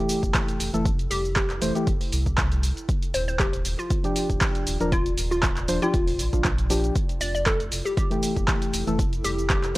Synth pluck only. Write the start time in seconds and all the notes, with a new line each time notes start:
1.11 G4
1.36 G4
3.14 C5
3.28 C5
3.40 G4
3.79 F4
4.92 F4
5.31 F4
5.82 F4
7.21 D5
7.35 D5
7.46 A4
7.85 G4
7.97 G4
9.24 G4
9.50 G4